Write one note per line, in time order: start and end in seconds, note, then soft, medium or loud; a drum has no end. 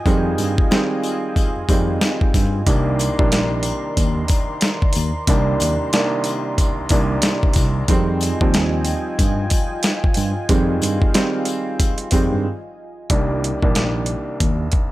0.00 2.63 F4 medium
0.00 2.63 D#5 medium
0.00 2.62 G#5 medium
0.06 0.32 F2 loud
0.06 0.67 D#3 loud
0.06 0.67 G3 medium
0.06 0.67 G#3 medium
0.06 0.67 C4 medium
0.06 2.64 F5 medium
0.06 kick loud
0.06 sleigh bells soft
0.38 0.54 G2 medium
0.38 sleigh bells medium
0.58 kick loud
0.71 1.62 D#3 medium
0.71 1.63 G3 medium
0.71 1.63 G#3 medium
0.71 1.63 C4 loud
0.71 snare loud
0.71 sleigh bells soft
1.03 sleigh bells medium
1.36 kick medium
1.36 sleigh bells medium
1.56 1.61 F2 soft
1.69 1.95 F2 medium
1.69 2.60 D#3 loud
1.69 2.60 G3 medium
1.69 2.61 G#3 medium
1.69 2.61 C4 loud
1.69 kick medium
1.69 sleigh bells medium
2.01 snare loud
2.01 sleigh bells medium
2.21 kick loud
2.34 2.60 G2 medium
2.34 kick loud
2.34 snare soft
2.34 sleigh bells medium
2.66 3.14 C2 medium
2.66 3.08 C2 loud
2.66 3.14 D#3 medium
2.66 7.85 D#3 medium
2.66 3.14 G3 medium
2.66 3.14 A#3 medium
2.66 3.14 D4 loud
2.66 7.85 D5 medium
2.66 7.85 A#5 medium
2.66 7.85 C6 medium
2.66 kick loud
2.66 closed hi-hat loud
2.66 sleigh bells soft
2.99 closed hi-hat medium
2.99 sleigh bells medium
3.19 3.71 A#1 medium
3.19 5.14 C2 medium
3.19 5.14 D#3 medium
3.19 5.14 G3 medium
3.19 5.14 A#3 medium
3.19 5.14 D4 loud
3.19 kick loud
3.32 snare loud
3.32 closed hi-hat medium
3.32 sleigh bells soft
3.63 closed hi-hat medium
3.63 sleigh bells medium
3.97 4.23 D#2 loud
3.97 kick medium
3.97 closed hi-hat loud
3.97 sleigh bells medium
4.28 kick medium
4.28 closed hi-hat medium
4.28 sleigh bells medium
4.61 snare loud
4.61 closed hi-hat loud
4.61 sleigh bells medium
4.82 kick loud
4.93 5.11 D#2 medium
4.93 closed hi-hat medium
4.93 sleigh bells medium
5.27 5.53 C2 loud
5.27 5.89 C2 medium
5.27 5.89 D#3 medium
5.27 5.89 G3 medium
5.27 5.89 A#3 medium
5.27 5.89 D4 loud
5.27 kick loud
5.27 closed hi-hat loud
5.27 sleigh bells soft
5.60 5.76 D#2 medium
5.60 closed hi-hat medium
5.60 sleigh bells medium
5.93 6.85 C2 medium
5.93 6.85 D#3 medium
5.93 6.85 G3 medium
5.93 6.85 A#3 medium
5.93 6.85 D4 loud
5.93 snare loud
5.93 closed hi-hat medium
5.93 sleigh bells soft
6.24 closed hi-hat medium
6.24 sleigh bells medium
6.58 kick medium
6.58 closed hi-hat loud
6.58 sleigh bells medium
6.78 6.83 C2 soft
6.89 7.82 C2 loud
6.89 7.16 C2 medium
6.89 7.82 D#3 medium
6.89 7.82 G3 medium
6.89 7.82 A#3 medium
6.89 7.83 D4 loud
6.89 kick loud
6.89 closed hi-hat medium
6.89 sleigh bells medium
7.22 snare loud
7.22 closed hi-hat loud
7.22 sleigh bells medium
7.43 kick loud
7.53 7.82 C2 loud
7.53 kick medium
7.53 snare soft
7.53 closed hi-hat medium
7.53 sleigh bells medium
7.88 8.30 F2 loud
7.88 8.36 D#3 medium
7.88 8.36 G3 medium
7.88 8.36 G#3 medium
7.88 8.37 C4 loud
7.88 13.06 F4 medium
7.88 13.06 D#5 medium
7.88 10.47 G5 medium
7.88 13.06 G#5 medium
7.88 kick loud
7.88 closed hi-hat loud
7.88 sleigh bells soft
8.21 closed hi-hat medium
8.21 sleigh bells medium
8.41 8.92 D#2 medium
8.41 10.36 D#3 medium
8.41 10.36 F3 medium
8.41 10.36 G3 medium
8.41 10.36 C4 loud
8.41 kick loud
8.54 snare loud
8.54 closed hi-hat medium
8.54 sleigh bells soft
8.85 closed hi-hat medium
8.85 sleigh bells medium
9.19 9.45 G2 loud
9.19 kick loud
9.19 closed hi-hat loud
9.19 sleigh bells medium
9.50 kick medium
9.50 closed hi-hat medium
9.50 sleigh bells medium
9.83 snare loud
9.83 closed hi-hat loud
9.83 sleigh bells medium
10.04 kick loud
10.14 10.32 G2 loud
10.14 closed hi-hat medium
10.14 sleigh bells medium
10.49 10.75 F2 loud
10.49 11.10 D#3 loud
10.49 11.10 G3 medium
10.49 11.10 G#3 medium
10.49 11.11 C4 loud
10.49 13.08 F5 medium
10.49 kick loud
10.49 closed hi-hat loud
10.49 sleigh bells soft
10.82 10.98 G2 medium
10.82 closed hi-hat medium
10.82 sleigh bells medium
11.02 kick loud
11.14 12.06 D#3 medium
11.14 12.06 G3 medium
11.14 12.06 G#3 medium
11.14 12.06 C4 loud
11.14 snare loud
11.14 closed hi-hat medium
11.14 sleigh bells soft
11.45 closed hi-hat medium
11.45 sleigh bells medium
11.80 kick medium
11.80 closed hi-hat loud
11.80 sleigh bells medium
11.98 closed hi-hat medium
12.11 12.28 F2 medium
12.11 12.45 D#3 loud
12.11 12.45 G3 medium
12.11 12.45 G#3 medium
12.11 12.45 C4 loud
12.11 kick medium
12.11 closed hi-hat medium
12.11 sleigh bells medium
12.32 12.45 G2 loud
13.10 13.58 C2 medium
13.10 13.51 C2 loud
13.10 13.58 D#3 medium
13.10 13.58 G3 medium
13.10 13.58 A#3 medium
13.10 13.58 D4 loud
13.10 kick loud
13.10 closed hi-hat medium
13.44 closed hi-hat medium
13.62 14.14 A#1 medium
13.62 14.92 C2 medium
13.62 14.92 D#3 medium
13.62 14.92 G3 medium
13.62 14.92 A#3 medium
13.62 14.92 D4 loud
13.62 kick loud
13.75 snare loud
13.75 closed hi-hat medium
14.06 closed hi-hat medium
14.40 14.66 D#2 loud
14.40 kick medium
14.40 closed hi-hat loud
14.72 kick medium
14.72 closed hi-hat medium